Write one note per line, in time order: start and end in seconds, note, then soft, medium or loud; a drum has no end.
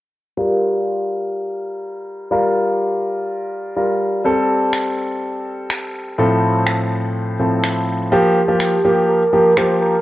0.37 2.27 G3 medium
0.37 2.28 F4 medium
0.37 2.28 A#4 medium
2.31 3.73 G3 medium
2.31 3.74 F4 medium
2.31 3.74 A#4 medium
3.76 4.23 G3 medium
3.76 4.25 F4 soft
3.76 4.25 A#4 medium
4.24 6.14 G3 medium
4.24 6.15 C4 medium
4.24 6.15 A4 medium
4.73 finger snap loud
5.70 finger snap loud
6.18 7.37 A2 medium
6.18 7.37 F3 medium
6.18 7.37 C4 medium
6.18 7.37 A4 medium
6.67 finger snap medium
7.39 8.12 A2 medium
7.39 8.10 F3 soft
7.39 8.12 C4 medium
7.39 8.12 A4 medium
7.64 finger snap loud
8.12 8.40 F3 medium
8.12 8.40 A#3 medium
8.12 8.40 G4 medium
8.36 9.10 G4 medium
8.48 8.76 F3 medium
8.48 8.76 A#3 medium
8.48 8.76 G4 medium
8.60 finger snap loud
8.85 9.21 F3 medium
8.85 9.21 A#3 medium
8.85 9.22 G4 medium
9.09 9.59 A#4 loud
9.33 9.51 F3 medium
9.33 9.51 A#3 medium
9.33 9.52 G4 medium
9.57 9.94 F3 medium
9.57 9.94 A#3 medium
9.57 9.94 G4 medium
9.57 9.81 C5 loud
9.57 finger snap loud
9.82 10.02 A#4 medium